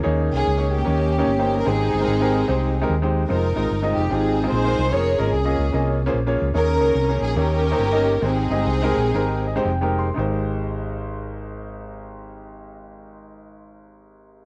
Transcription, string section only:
0.31 C#4 G#4
0.72 A#3 C#4 G4
1.53 A#4
1.66 C4 D#4 G#4
3.29 D#4 A#4
3.96 G4
4.10 C4 D#4 G#4
4.50 D#4 G#4 C5
4.92 G#4 A#4 C#5
5.20 A#4
5.33 C#4 G#4
6.55 C#4 A#4
7.23 G#4
7.37 C#4 G4 A#4
8.24 C4 D#4 G#4

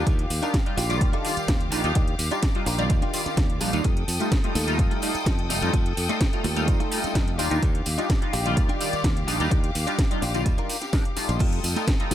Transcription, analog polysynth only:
0.43 G3 D4 D#4 F4
0.66 G3 D4 D#4 F4
0.89 D#3 G3 F4 D5
1.24 D#3 G3 F4 D5
1.72 G3 D4 D#4 F4
1.84 G3 D4 D#4 F4
2.31 G3 D4 D#4 F4
2.55 G3 D4 D#4 F4
2.78 D#3 G3 F4 D5
3.13 D#3 G3 F4 D5
3.61 G3 D4 D#4 F4
3.73 G3 D4 D#4 F4
4.20 G3 A3 D#4 F4
4.44 G3 A3 D#4 F4
4.67 G3 A3 D#4 F4
5.02 G3 A3 D#4 F4
5.49 G3 A3 D#4 F4
5.62 G3 A3 D#4 F4
6.09 G3 A3 D#4 F4
6.33 G3 A3 D#4 F4
6.56 G3 A3 D#4 F4
6.91 G3 A3 D#4 F4
7.38 G3 D4 D#4 F4
7.50 G3 D4 D#4 F4
7.98 G3 D4 D#4 F4
8.21 G3 D4 D#4 F4
8.45 D#3 G3 F4 D5
8.80 D#3 G3 F4 D5
9.28 G3 D4 D#4 F4
9.40 G3 D4 D#4 F4
9.87 G3 D4 D#4 F4
10.11 G3 D4 D#4 F4
10.34 D#3 G3 F4 D5
10.93 G3 D4 D#4 A#4
11.16 G3 A3 D#4 F4
11.76 G3 A3 D#4 F4
12.00 G3 A3 D#4 F4

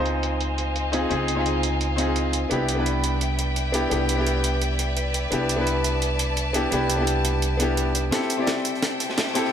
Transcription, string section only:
Already playing: C5 D#5 F5 G#5
2.51 B4 D5 E5 G5
5.32 A5
8.12 A4 C5 E5 G5

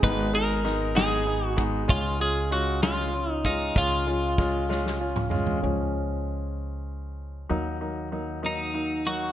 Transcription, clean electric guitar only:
0.04 B4
0.35 A#4
0.97 G#4
1.46 F#4
1.90 F4
2.21 G#4
2.52 F#4
2.83 F4
3.32 D#4
3.46 D#4
3.78 F4
8.46 D#4
9.07 F#4

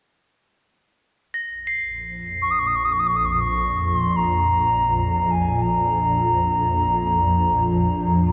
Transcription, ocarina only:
2.42 C#6
2.51 D#6
2.59 C#6
2.67 D#6
2.76 C#6
2.84 D#6
2.92 C#6
2.99 D#6
3.07 C#6
3.16 D#6
3.25 C#6
3.32 D#6
3.40 C#6
3.87 C6
4.16 A#5
5.31 G#5
5.62 A#5

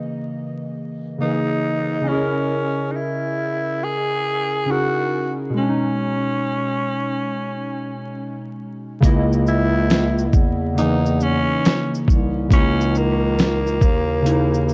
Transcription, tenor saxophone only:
1.21 D#4
2.08 C#4
2.91 D#4
2.96 E4
3.84 G#4
4.71 F#4
5.57 C#4
9.48 E4
10.78 D#4
11.23 C#4
12.53 C#4
12.97 A#3

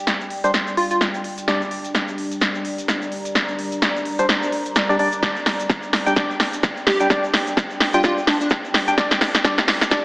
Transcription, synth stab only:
0.44 G3 D4 C5
1.48 G3 D4 D5
4.19 G3 D4 C5
4.89 G3 D4 D5
4.99 G3 D4 D5
5.23 G3 D4 D5
6.06 G3 D4 G5
6.16 G3 D4 D5
7.00 G3 D4 G5
7.10 G3 D4 D5
7.94 G3 D4 G5
8.04 G3 D4 D5
8.88 G3 D4 G5
8.98 G3 D4 D5
9.45 G3 D4 D5
9.91 G3 D4 D5

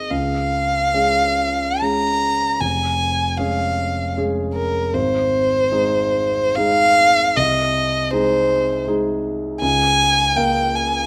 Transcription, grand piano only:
Already playing: D#4 G#4 C5 D#5
0.11 C#2
0.94 G#3 C#4 G#4
1.82 G#3 C#4 G#4
2.61 F1
3.38 G#3 C#4 G#4
4.17 G#3 C#4 G#4
4.94 G#1
5.71 G#3 D#4 G#4
6.57 G#3 D#4 G#4
7.37 C2
8.12 G#3 D#4 G#4
8.87 G#3 D#4 G#4
9.62 C#2
10.36 A#3 A#4 F5

